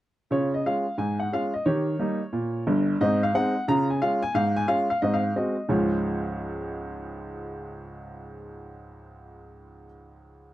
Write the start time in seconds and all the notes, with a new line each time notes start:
0.31 C#3 F4 C#5
0.54 D#5
0.66 G#3 C#4 F4 F5
0.98 G#2 G#5
1.20 F#5
1.32 G#3 C#4 F4 F5
1.54 D#5
1.66 D#3 G4 C#5
1.99 G3 A#3 D#4
2.33 A#2
2.67 G1 G2
3.01 G#2 C4 D#5
3.23 F5
3.35 G#3 C4 D#4 F#5
3.68 C#3 F4 A#5
3.90 G#5
4.02 G#3 C#4 F4 F5
4.23 G#5
4.34 G#2 F5
4.56 G#5
4.68 G#3 C#4 F4 F5
4.90 F5
5.02 G#2 C4 D#5
5.14 F5
5.36 G#3 C4 F#4 D#5
5.69 C#2 G#2 F3 G#3 C#4 F4 C#5